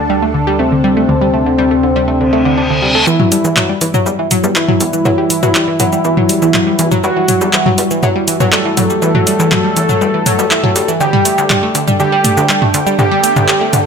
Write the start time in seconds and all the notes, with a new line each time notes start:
Already playing: D2 D4 A4 A5
0.10 G3
0.22 A3
0.34 D3
0.47 G3
0.59 A3 C4
0.72 D3
0.84 G3
0.97 A3
1.09 D2 D3
1.21 G3
1.34 A3
1.46 D3
1.58 G3
1.71 A3
1.83 D3
1.96 G3
2.08 A3, reverse cymbal
2.21 D3
2.33 A3
2.45 D3
2.57 D4
2.70 D3
2.82 G3
2.95 A3
3.07 E2 E3 G3 E4 F#4, shaker
3.20 F#3, mid tom
3.32 G3, open hi-hat, shaker
3.45 E2 E3, shaker
3.57 F#3, clap, mid tom, shaker
3.69 G3
3.81 E2 E3, open hi-hat, shaker
3.94 F#3, mid tom, shaker
4.06 E2 G3, shaker
4.19 E3
4.31 F#3, mid tom, open hi-hat, shaker
4.44 E2 G3, shaker
4.56 E3 E4, clap, shaker
4.68 F#3, mid tom
4.80 E2 G3, open hi-hat, shaker
4.93 E3, shaker
5.05 E2 F#3, mid tom, shaker
5.18 G3
5.30 E3, open hi-hat, shaker
5.43 E2 F#3, mid tom, shaker
5.55 G3, clap, shaker
5.68 E3
5.80 E2 F#3, mid tom, open hi-hat, shaker
5.92 G3, shaker
6.04 E2 E3, shaker
6.17 F#3, mid tom
6.29 G3, open hi-hat, shaker
6.42 E2 E3, shaker
6.54 F#3, clap, mid tom, shaker
6.67 G3
6.79 E2 E3, open hi-hat, shaker
6.92 F#3, mid tom, shaker
7.04 E2 G3 F#4, shaker
7.16 E3
7.28 F#3, mid tom, open hi-hat, shaker
7.41 E2 G3, shaker
7.53 E3, clap, shaker
7.66 F#3, mid tom
7.78 E2 G3, open hi-hat, shaker
7.91 E3, shaker
8.03 E2 F#3, mid tom, shaker
8.16 G3
8.28 E3, open hi-hat, shaker
8.40 E2 F#3, mid tom, shaker
8.52 G3 A4, clap, shaker
8.65 E3
8.77 E2 F#3, mid tom, open hi-hat, shaker
8.90 G3, shaker
9.02 E2 E3, shaker
9.15 F#3, mid tom
9.27 G3, open hi-hat, shaker
9.40 E2 E3, shaker
9.52 F#3, clap, mid tom, shaker
9.64 G3
9.76 E2 E3, open hi-hat, shaker
9.89 F#3, mid tom, shaker
10.01 E2 G3, shaker
10.14 E3
10.26 F#3, mid tom, open hi-hat, shaker
10.39 B1 G3, shaker
10.51 E3, clap, shaker
10.64 F#3, mid tom
10.76 D2 G3, open hi-hat, shaker
10.88 E3, shaker
11.00 D2 D3 D4 G4 A4 G5, riser, shaker
11.13 G3, mid tom
11.25 A3, open hi-hat, shaker
11.38 D2 D3, shaker
11.50 G3, clap, mid tom, shaker
11.63 A3
11.75 D2 D3, open hi-hat, shaker
11.88 G3, mid tom, shaker
12.00 D2 D3 G4, shaker
12.12 G3
12.24 A3, mid tom, open hi-hat, shaker
12.37 D2 D3, shaker
12.49 G3, clap, shaker
12.62 A3, mid tom
12.74 D2 D3, open hi-hat, shaker
12.87 G3, shaker
12.99 D2 D3 G4, mid tom, shaker
13.12 G3
13.24 A3, open hi-hat, shaker
13.36 D2 D3, mid tom, shaker
13.48 G3, clap, shaker
13.61 A3
13.73 D2 D3, mid tom, open hi-hat, shaker